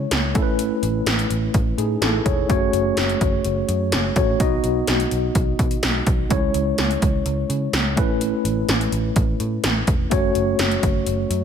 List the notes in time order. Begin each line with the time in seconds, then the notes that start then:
Already playing: G#3 C#4 E4 C#5
0.11 C#2, snare, closed hi-hat
0.34 A1 A3 C#4 E4 A4, kick, closed hi-hat
0.42 B4
0.59 closed hi-hat
0.83 A1, closed hi-hat
1.06 A1, snare, closed hi-hat
1.19 closed hi-hat
1.30 A1, closed hi-hat
1.54 A1, kick, closed hi-hat
1.78 A2 D#4 G#4, closed hi-hat
2.01 A1 E4 A4, snare, closed hi-hat
2.26 E1 G#4 C#5, kick, closed hi-hat
2.48 F#1 A3 C#4 F#4 C#5, kick, closed hi-hat
2.73 F#1, closed hi-hat
2.97 F#1, snare, closed hi-hat
3.09 closed hi-hat
3.21 F#1, kick, closed hi-hat
3.45 F#1, closed hi-hat
3.68 F#2, closed hi-hat
3.92 F#1, snare, closed hi-hat
4.16 A1 A3 C#4 F#4 C#5, kick, closed hi-hat
4.39 B1 B3 D#4 F#4 D#5, kick, closed hi-hat
4.64 B1, closed hi-hat
4.87 B1, snare, closed hi-hat
5.00 closed hi-hat
5.11 B1, closed hi-hat
5.35 B1, kick, closed hi-hat
5.59 B2, kick, closed hi-hat
5.71 closed hi-hat
5.83 B1, snare, closed hi-hat
6.07 B1, kick, closed hi-hat
6.29 C#2 G#3 C#4 E4 C#5, kick, closed hi-hat
6.54 C#2, closed hi-hat
6.78 C#2, snare, closed hi-hat
6.91 closed hi-hat
7.02 C#2, kick, closed hi-hat
7.26 C#2, closed hi-hat
7.49 C#3, closed hi-hat
7.73 C#2, snare, closed hi-hat
7.96 A1 A3 C#4 E4 B4, kick, closed hi-hat
8.21 closed hi-hat
8.44 A1, closed hi-hat
8.68 A1, snare, closed hi-hat
8.81 closed hi-hat
8.92 A1, closed hi-hat
9.16 A1, kick, closed hi-hat
9.40 A2, closed hi-hat
9.64 A1, snare, closed hi-hat
9.87 E1, kick, closed hi-hat
10.10 F#1 A3 C#4 F#4 C#5, kick, closed hi-hat
10.35 F#1, closed hi-hat
10.59 F#1, snare, closed hi-hat
10.71 closed hi-hat
10.83 F#1, kick, closed hi-hat
11.06 F#1, closed hi-hat
11.30 F#2, closed hi-hat